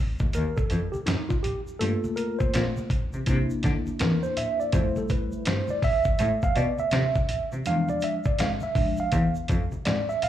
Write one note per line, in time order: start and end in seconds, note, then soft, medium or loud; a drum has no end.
0.19 0.25 D#2 soft
0.19 kick medium
0.19 shaker soft
0.33 0.42 D#2 medium
0.33 0.56 A#4 medium
0.33 closed hi-hat medium
0.33 shaker medium
0.57 0.94 A4 medium
0.57 kick medium
0.57 shaker soft
0.70 0.78 F2 medium
0.70 closed hi-hat medium
0.70 shaker soft
0.92 0.99 G4 medium
0.92 high conga medium
0.92 shaker soft
1.06 1.15 F#2 loud
1.06 1.30 D#4 medium
1.06 snare loud
1.06 closed hi-hat medium
1.06 low conga medium
1.06 shaker medium
1.29 1.35 F4 medium
1.29 kick medium
1.29 shaker soft
1.43 1.60 G4 medium
1.43 closed hi-hat medium
1.43 low conga medium
1.43 shaker soft
1.67 shaker soft
1.79 1.89 G2 medium
1.79 2.86 A3 medium
1.79 2.86 A#3 medium
1.79 2.87 F4 medium
1.79 2.18 A4 loud
1.79 closed hi-hat medium
1.79 shaker medium
2.04 high conga medium
2.04 shaker soft
2.16 2.38 A#4 medium
2.16 closed hi-hat medium
2.16 shaker soft
2.39 2.73 C5 medium
2.39 kick medium
2.39 shaker soft
2.54 2.62 A#2 medium
2.54 snare loud
2.54 closed hi-hat loud
2.54 shaker medium
2.77 high conga medium
2.77 shaker soft
2.90 kick medium
2.90 closed hi-hat medium
2.90 low conga medium
2.90 shaker soft
3.13 3.18 C3 soft
3.13 shaker soft
3.26 3.36 C3 loud
3.26 4.69 A#3 medium
3.26 4.69 D4 soft
3.26 4.69 E4 medium
3.26 kick loud
3.26 closed hi-hat medium
3.26 shaker medium
3.50 shaker soft
3.63 3.72 D3 medium
3.63 kick medium
3.63 snare soft
3.63 closed hi-hat medium
3.63 shaker soft
3.87 high conga medium
3.87 shaker soft
3.99 4.09 E2 medium
3.99 4.21 A#4 medium
3.99 snare loud
3.99 closed hi-hat loud
3.99 low conga medium
3.99 shaker medium
4.23 4.37 C5 medium
4.23 shaker soft
4.37 4.58 E5 loud
4.37 closed hi-hat medium
4.37 low conga medium
4.37 shaker soft
4.60 4.74 D5 medium
4.60 shaker soft
4.72 4.81 F2 medium
4.72 5.80 G3 medium
4.72 5.80 A3 soft
4.72 5.80 E4 medium
4.72 4.98 C5 medium
4.72 kick loud
4.72 closed hi-hat medium
4.72 shaker medium
4.96 5.11 A4 medium
4.96 high conga medium
4.96 shaker soft
5.09 5.45 B4 medium
5.09 kick medium
5.09 closed hi-hat medium
5.09 shaker medium
5.32 shaker soft
5.45 5.55 G2 loud
5.45 5.70 C5 medium
5.45 snare loud
5.45 closed hi-hat loud
5.45 shaker medium
5.68 5.84 D5 medium
5.68 high conga medium
5.68 shaker soft
5.82 6.45 E5 loud
5.82 kick medium
5.82 open hi-hat medium
5.82 low conga medium
5.82 shaker soft
6.04 kick medium
6.04 shaker soft
6.19 6.28 A2 medium
6.19 closed hi-hat medium
6.19 shaker medium
6.42 6.56 F5 loud
6.42 kick medium
6.42 shaker soft
6.56 6.64 B2 medium
6.56 6.78 D5 loud
6.56 closed hi-hat medium
6.56 shaker soft
6.78 7.48 E5 loud
6.78 high conga medium
6.78 shaker soft
6.91 7.01 C3 medium
6.91 snare loud
6.91 closed hi-hat loud
6.91 low conga medium
6.91 shaker medium
7.15 kick medium
7.15 shaker soft
7.29 closed hi-hat medium
7.29 low conga medium
7.29 shaker soft
7.52 7.57 C3 soft
7.52 shaker soft
7.65 7.74 E2 loud
7.65 8.18 F3 medium
7.65 8.18 G#3 medium
7.65 8.18 D4 medium
7.65 7.88 F5 loud
7.65 closed hi-hat medium
7.65 shaker medium
7.89 8.03 D5 medium
7.89 high conga medium
7.89 shaker soft
8.01 8.14 E5 medium
8.01 closed hi-hat medium
8.01 shaker medium
8.24 8.40 D5 medium
8.24 kick medium
8.24 shaker soft
8.39 8.47 G#2 medium
8.39 8.50 F5 medium
8.39 snare loud
8.39 closed hi-hat loud
8.39 shaker medium
8.61 9.00 E5 medium
8.61 high conga medium
8.61 shaker soft
8.75 9.08 F3 medium
8.75 9.09 G#3 soft
8.75 9.09 D4 medium
8.75 kick loud
8.75 open hi-hat medium
8.75 low conga medium
8.75 shaker soft
8.97 9.33 F5 medium
8.97 shaker soft
9.12 9.21 E2 loud
9.12 kick loud
9.12 closed hi-hat medium
9.12 shaker medium
9.35 shaker soft
9.48 9.58 F2 medium
9.48 kick medium
9.48 closed hi-hat medium
9.48 shaker soft
9.72 high conga medium
9.72 shaker soft
9.85 9.94 G#2 medium
9.85 10.09 D5 loud
9.85 snare loud
9.85 closed hi-hat loud
9.85 low conga medium
9.85 shaker medium
10.09 10.23 E5 medium
10.09 shaker soft
10.22 10.29 F5 loud
10.22 closed hi-hat medium
10.22 low conga medium
10.22 shaker soft